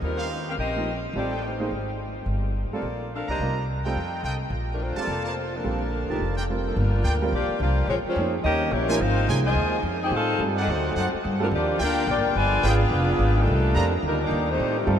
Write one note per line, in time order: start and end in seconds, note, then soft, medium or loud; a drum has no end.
0.02 0.55 D#2 medium
0.02 0.28 G3 medium
0.02 0.29 C4 medium
0.02 0.29 F4 medium
0.02 0.28 A#4 medium
0.17 0.55 D#4 medium
0.17 0.55 G4 medium
0.17 0.55 C5 medium
0.17 0.55 F5 medium
0.48 0.53 C4 medium
0.48 0.54 G4 medium
0.48 0.54 A#4 medium
0.48 0.54 F5 medium
0.58 1.11 A#1 medium
0.58 1.01 C4 medium
0.58 1.01 G4 medium
0.58 1.01 A#4 medium
0.58 1.01 D#5 medium
0.76 0.86 F3 medium
0.76 0.86 A#3 soft
0.76 0.86 D#4 soft
0.76 0.86 G4 medium
1.13 1.67 A1 medium
1.13 1.30 G3 soft
1.13 1.30 C4 soft
1.13 1.42 C4 medium
1.13 1.30 F4 soft
1.13 1.31 A4 medium
1.13 1.42 A4 medium
1.13 1.42 D5 medium
1.17 1.42 G4 medium
1.30 1.68 D#4 medium
1.30 1.68 A4 medium
1.30 1.68 C5 medium
1.30 1.68 G5 medium
1.43 1.71 A3 medium
1.43 1.99 D#4 medium
1.43 1.71 G4 medium
1.43 1.99 C5 medium
1.60 1.70 A#3 medium
1.60 1.70 D#4 soft
1.60 1.70 G#4 medium
1.60 1.70 C5 medium
1.71 2.24 G#1 medium
2.26 2.68 G1 medium
2.71 2.83 G3 soft
2.71 3.09 A#3 medium
2.71 2.83 C4 soft
2.71 2.83 F4 soft
2.71 3.10 F4 medium
2.71 3.09 A4 medium
2.71 2.83 A4 medium
2.71 3.09 D5 medium
2.71 muted upright bass stroke soft
2.82 3.24 A#1 medium
3.15 3.29 D4 medium
3.15 3.31 A4 medium
3.15 3.31 A#4 medium
3.15 3.31 F5 medium
3.28 3.38 B1 medium
3.28 3.55 A#3 medium
3.28 3.55 D4 medium
3.28 3.65 D#4 medium
3.28 3.55 G4 medium
3.28 3.65 C5 medium
3.28 3.65 D5 medium
3.28 3.55 D#5 medium
3.28 3.65 A#5 medium
3.39 3.92 C2 medium
3.39 3.55 G3 soft
3.39 3.55 C4 soft
3.39 3.56 F4 soft
3.39 3.55 A#4 soft
3.84 3.95 G3 medium
3.84 3.95 C4 soft
3.84 4.22 F4 medium
3.84 3.95 F4 medium
3.84 4.22 A4 medium
3.84 3.96 A4 medium
3.84 4.22 D#5 medium
3.84 4.21 G5 medium
3.95 4.22 F2 medium
4.23 4.49 C2 medium
4.23 4.35 F4 medium
4.23 4.35 A4 medium
4.23 4.35 D#5 medium
4.23 4.35 G5 medium
4.50 4.93 A#1 medium
4.73 4.82 F3 medium
4.73 4.82 A3 medium
4.73 4.82 D4 medium
4.73 4.82 A#4 medium
4.83 4.98 A3 medium
4.83 4.98 D4 medium
4.83 4.98 F4 medium
4.83 4.99 C5 medium
4.96 5.07 G3 medium
4.96 5.07 C4 soft
4.96 5.23 F4 medium
4.96 5.07 F4 soft
4.96 5.07 A4 medium
4.96 5.23 A#4 medium
4.96 5.23 D5 medium
4.96 5.23 A5 medium
4.96 muted upright bass stroke soft
5.01 5.27 A#3 medium
5.01 5.28 F4 medium
5.01 5.27 A4 medium
5.01 5.27 D5 medium
5.07 5.61 F1 medium
5.25 5.32 F4 medium
5.25 5.53 A4 medium
5.25 5.32 A#4 medium
5.25 5.55 C5 medium
5.25 5.32 D5 medium
5.25 5.32 A5 medium
5.29 5.55 A#3 medium
5.29 5.55 F4 medium
5.54 6.49 D3 medium
5.54 6.49 F3 medium
5.54 6.50 F3 medium
5.54 6.50 A#3 medium
5.54 6.50 D4 medium
5.54 6.49 A4 medium
5.54 6.50 A#4 medium
5.64 6.06 A#1 medium
5.64 5.79 G3 medium
5.64 5.80 C4 soft
5.64 5.79 F4 soft
5.64 5.79 A4 medium
6.09 6.19 B1 medium
6.09 6.20 F3 medium
6.09 6.20 A#3 soft
6.09 6.20 D#4 medium
6.09 6.35 F4 medium
6.09 6.20 G4 medium
6.09 6.35 A#4 medium
6.09 6.35 D5 medium
6.09 6.36 A5 medium
6.19 6.73 F1 medium
6.36 6.44 F4 medium
6.36 6.44 A#4 medium
6.36 6.44 D5 medium
6.36 6.44 G5 medium
6.50 6.64 G3 soft
6.50 6.64 C4 soft
6.50 6.64 F4 soft
6.50 6.65 A#4 medium
6.66 6.74 D3 medium
6.66 6.74 F3 soft
6.66 6.76 F3 medium
6.66 6.76 A3 medium
6.66 6.76 A#3 medium
6.66 6.76 D4 medium
6.66 6.76 A4 medium
6.75 7.03 G1 medium
6.75 7.21 D3 medium
6.75 7.21 F3 medium
6.75 7.22 G3 medium
6.75 7.21 A#3 medium
6.75 7.22 D4 medium
6.75 7.22 F4 medium
6.75 7.22 A#4 medium
7.03 7.31 D2 medium
7.03 7.15 F4 medium
7.03 7.15 A#4 medium
7.03 7.15 D5 medium
7.03 7.15 G5 medium
7.22 7.32 G3 medium
7.22 7.32 C4 medium
7.22 7.32 F4 medium
7.22 7.32 A#4 medium
7.32 7.48 A#1 medium
7.32 7.58 F3 medium
7.32 7.59 A#3 medium
7.32 7.58 D4 medium
7.32 7.60 F4 medium
7.32 7.60 G4 medium
7.32 7.60 D5 loud
7.49 muted upright bass stroke soft
7.59 7.87 C2 medium
7.59 7.86 F3 medium
7.59 7.86 A#3 medium
7.59 7.87 A#3 medium
7.59 7.86 D4 medium
7.59 7.87 F4 medium
7.59 7.87 G4 medium
7.59 7.87 D5 medium
7.87 8.04 A#1 medium
7.87 7.96 F3 medium
7.87 7.96 G#3 medium
7.87 7.97 G#3 medium
7.87 7.96 C4 medium
7.87 7.96 C#4 medium
7.87 7.97 F4 medium
7.87 7.96 C#5 loud
8.04 8.31 F3 medium
8.04 8.31 G#3 medium
8.04 8.32 G#3 medium
8.04 8.31 C4 medium
8.04 8.33 C#4 medium
8.04 8.33 F4 medium
8.04 8.33 C5 medium
8.04 muted upright bass stroke soft
8.16 8.43 F2 medium
8.16 8.32 F3 medium
8.16 8.32 A#3 medium
8.16 8.32 D#4 medium
8.16 8.33 G#4 medium
8.44 8.71 D#2 medium
8.44 8.71 G3 medium
8.44 8.71 A#3 medium
8.44 8.71 C#4 medium
8.44 8.70 D#4 medium
8.44 8.71 G4 medium
8.44 8.71 A#4 medium
8.44 8.70 D#5 loud
8.71 8.99 A#1 medium
8.71 9.00 G3 medium
8.71 9.00 A#3 medium
8.71 9.00 C#4 medium
8.71 9.01 E4 medium
8.71 9.00 G4 medium
8.71 9.01 C#5 medium
8.89 8.99 F3 medium
8.89 8.99 A#3 medium
8.89 8.99 D#4 medium
8.89 8.96 F4 loud
8.89 8.97 A#4 medium
8.89 8.99 A#4 medium
8.89 8.96 C5 medium
8.89 8.97 G#5 loud
9.00 9.27 G#1 medium
9.00 9.28 F3 medium
9.00 9.28 C4 medium
9.00 9.29 D#4 medium
9.00 9.28 F4 medium
9.00 9.29 A#4 medium
9.00 9.28 C5 loud
9.00 9.29 F5 loud
9.28 9.54 C2 medium
9.28 9.43 F3 medium
9.28 9.44 A#3 medium
9.28 9.43 D#4 soft
9.28 9.39 F4 medium
9.28 9.44 G#4 medium
9.28 9.39 A#4 medium
9.28 9.39 C5 medium
9.28 9.39 G#5 medium
9.45 9.81 D#3 medium
9.45 9.82 F3 medium
9.45 9.82 G#3 medium
9.45 9.82 F4 medium
9.45 9.82 C5 medium
9.45 9.82 D#5 medium
9.45 9.82 G#5 loud
9.55 9.82 D#2 medium
9.83 10.10 F2 medium
10.03 10.13 D#4 medium
10.03 10.13 G4 medium
10.03 10.13 G#4 medium
10.03 10.13 C5 medium
10.03 10.13 G5 loud
10.10 10.38 A2 medium
10.10 10.41 C4 medium
10.10 10.41 F4 medium
10.15 10.41 G3 medium
10.15 10.42 D#4 medium
10.15 10.42 A4 medium
10.15 10.42 C5 loud
10.15 10.42 F5 loud
10.38 10.66 G2 medium
10.38 10.55 G3 medium
10.38 10.55 C4 soft
10.38 10.55 F4 soft
10.38 10.55 A4 medium
10.56 10.69 G3 medium
10.56 10.69 C4 medium
10.56 10.93 D#4 medium
10.56 10.69 D#4 medium
10.56 10.94 C5 medium
10.56 10.93 D5 medium
10.56 10.93 F#5 medium
10.61 10.70 C4 medium
10.61 10.69 G4 medium
10.61 10.70 A4 medium
10.61 10.70 D#5 medium
10.67 10.95 D2 medium
10.67 11.14 A3 medium
10.67 11.14 D#4 medium
10.71 11.15 F#3 medium
10.71 11.15 A3 medium
10.71 11.15 C4 medium
10.71 11.15 F#4 medium
10.71 11.14 C5 medium
10.96 11.12 F#2 medium
10.96 11.07 D#4 medium
10.96 11.07 C5 medium
10.96 11.07 D5 medium
10.96 11.07 F#5 medium
11.14 muted upright bass stroke soft
11.25 11.51 G2 medium
11.40 11.47 D3 medium
11.40 11.47 F3 medium
11.40 11.50 G3 medium
11.40 11.47 G3 medium
11.40 11.47 A#3 medium
11.40 11.51 C4 medium
11.40 11.47 D4 medium
11.40 11.51 F4 medium
11.40 11.50 A4 medium
11.40 11.48 A#4 medium
11.44 11.48 F4 medium
11.51 11.79 D#2 medium
11.51 11.79 F3 medium
11.51 11.79 A#3 medium
11.51 11.79 D4 medium
11.51 11.80 F4 medium
11.51 11.79 G4 medium
11.51 11.79 D5 loud
11.79 12.06 D2 medium
11.79 12.07 A#3 medium
11.79 12.07 D4 medium
11.79 12.09 D4 medium
11.79 12.21 F4 medium
11.79 12.09 F4 medium
11.79 12.09 G4 loud
11.79 12.21 A#4 medium
11.79 12.07 A#4 medium
11.79 12.21 D5 medium
11.79 12.09 F5 loud
11.79 12.21 G5 loud
12.07 12.17 A#1 medium
12.07 12.34 A#3 medium
12.07 12.34 D4 medium
12.07 12.34 F4 medium
12.07 12.34 G4 medium
12.07 12.34 A#4 medium
12.07 12.35 D5 medium
12.07 12.34 G5 loud
12.17 12.26 G1 medium
12.26 12.35 F1 medium
12.35 12.63 G1 medium
12.35 12.65 D3 medium
12.35 12.64 F3 medium
12.35 12.64 G#3 medium
12.35 12.64 F4 loud
12.35 12.64 B4 loud
12.35 12.64 D5 medium
12.35 12.64 G#5 loud
12.63 12.90 G#1 medium
12.63 12.79 B3 medium
12.63 12.79 D4 medium
12.63 13.37 D4 medium
12.63 12.74 F4 medium
12.63 12.79 F4 medium
12.63 12.74 G#4 medium
12.63 12.79 G#4 medium
12.63 12.74 B4 medium
12.63 12.74 G5 loud
12.67 13.38 B3 medium
12.67 13.38 D4 medium
12.67 13.38 F4 medium
12.67 13.38 G#4 medium
12.67 13.38 B4 medium
12.67 13.38 F5 loud
12.91 13.18 F1 medium
13.19 13.46 G#1 medium
13.40 13.94 A#2 medium
13.40 13.94 D#3 medium
13.40 13.94 G3 medium
13.40 13.94 A3 medium
13.40 13.95 D4 medium
13.40 13.94 D#4 medium
13.40 13.95 A4 loud
13.47 13.74 C2 medium
13.74 14.02 F2 medium
13.74 13.90 G3 medium
13.74 13.90 C4 medium
13.74 13.86 F4 medium
13.74 13.90 F4 medium
13.74 13.90 A#4 medium
13.74 13.86 D5 medium
13.74 13.86 D#5 medium
13.74 13.86 A#5 medium
14.03 14.30 D2 medium
14.03 14.21 D#3 medium
14.03 14.20 G3 medium
14.03 14.21 G3 medium
14.03 14.20 A#3 medium
14.03 14.20 D4 medium
14.03 14.20 D#4 medium
14.03 14.21 A#4 loud
14.23 14.48 G3 medium
14.23 14.48 A#3 medium
14.23 14.48 D4 medium
14.23 14.48 D#4 medium
14.23 14.48 G4 medium
14.23 14.48 D5 medium
14.31 14.58 D#2 medium
14.49 14.77 D#3 medium
14.49 14.77 G3 medium
14.49 14.76 A3 medium
14.49 14.78 C4 medium
14.49 14.77 D#4 medium
14.49 14.76 G4 medium
14.49 14.77 C5 loud
14.60 14.86 A2 medium
14.77 14.99 C3 medium
14.77 14.99 D#3 medium
14.77 14.99 G3 medium
14.77 14.99 A3 medium
14.77 14.99 C4 medium
14.77 14.99 G4 medium
14.86 14.99 G2 medium
14.86 14.99 G3 medium
14.86 14.99 C4 medium
14.86 14.99 F4 medium
14.86 14.99 A4 medium